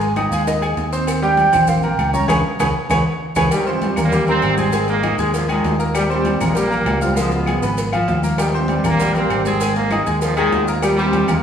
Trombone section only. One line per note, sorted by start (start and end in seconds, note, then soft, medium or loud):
3.53 4.09 G2 medium
3.53 4.09 C3 medium
3.53 3.66 D#3 medium
3.67 3.81 F3 medium
3.82 4.01 G3 medium
4.04 4.26 G3 medium
4.04 4.27 A#3 loud
4.28 4.70 G3 loud
4.28 4.56 C4 loud
4.57 4.88 D#3 medium
4.57 5.14 G#3 medium
4.57 4.86 C4 loud
4.89 5.45 D#3 medium
4.89 5.17 A#3 loud
5.19 5.33 G#3 loud
5.35 5.49 G#2 medium
5.35 5.49 A#2 medium
5.35 5.49 F3 loud
5.50 5.92 G#2 medium
5.50 5.92 A#2 medium
5.50 5.78 D#3 loud
5.97 6.09 A#2 medium
5.97 6.09 C3 medium
5.97 6.04 G3 loud
6.11 6.67 A#2 medium
6.11 6.67 C3 medium
6.11 6.44 G3 loud
6.47 6.57 G#3 medium
6.58 7.14 G3 medium
6.58 7.03 A#3 loud
7.04 7.17 C4 loud
7.19 7.75 B2 medium
7.19 7.33 F3 medium
7.19 7.33 G#3 loud
7.34 7.90 F3 medium
7.34 7.90 G#3 medium
7.34 7.90 B3 medium
8.39 8.96 G2 medium
8.39 8.96 C3 medium
8.39 8.53 D#3 medium
8.53 8.69 F3 medium
8.69 8.88 G3 loud
8.90 9.14 G3 medium
8.90 9.13 A#3 loud
9.15 9.58 G3 loud
9.15 9.43 C4 loud
9.45 9.76 D#3 medium
9.45 10.03 G#3 medium
9.45 9.73 C4 loud
9.76 10.34 D#3 medium
9.76 10.04 A#3 loud
10.05 10.20 G#3 loud
10.21 10.36 G#2 medium
10.21 10.36 A#2 medium
10.21 10.37 F3 loud
10.36 10.80 G#2 medium
10.36 10.79 A#2 medium
10.36 10.65 D#3 loud
10.82 10.97 A#2 medium
10.82 10.97 C3 medium
10.82 10.96 G3 loud
10.97 11.43 A#2 medium
10.97 11.43 C3 medium
10.97 11.30 G3 loud
11.32 11.37 G#3 medium